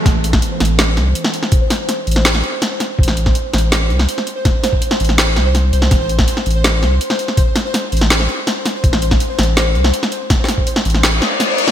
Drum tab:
HH |x---x---x---xx--x---x---x---x---|x---x---x---xx--x---x---x---x---|-x--x---x---xx--x---x---x---x---|x---x---x---xx--x---x---x---x---|
SD |o-----o-----o---o---o-----o---o-|----o---o-----o-o-o-----o---o---|--o---o-----o---o-----o---o-----|o---o-----o---o-o---o---o-----o-|
BD |o-----o-------------------------|o-------------------------------|o-----o-------------------------|o-----o-------------------------|

HH |x---x---x---xx--x---x---x---x---|x---x---x---xx--x---x---x---x---|x---x---x---xx--x---x---x---x---|x---x---x---xx--x---x---x---x---|
SD |o-----o---o-----o---o-----o---o-|----o---o-----o-o-o-----o---o---|--o---o-----o---o-----o---o-----|o--oo-----o---o-o---o---o-----o-|
BD |o-----o-------------------------|o-------------------------------|o-----o-------------------------|o-----o-------------------------|